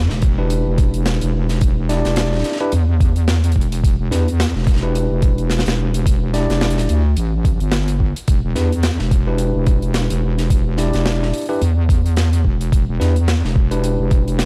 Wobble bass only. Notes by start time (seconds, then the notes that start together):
0.11 E1
0.66 E1
1.22 E1
2.05 E1
2.72 E2
3.56 E1
3.83 E1
3.99 E1
4.11 E2
4.55 E1
5.10 E1
5.66 E1
6.49 E1
6.89 D2
7.17 A1
7.60 G1
8.28 E1
8.44 E1
8.55 E2
9.00 E1
9.55 E1
10.10 E1
10.94 E1
11.61 E2
12.45 E1
12.72 E1
12.88 E1
13.00 E2
13.44 E1
13.99 E1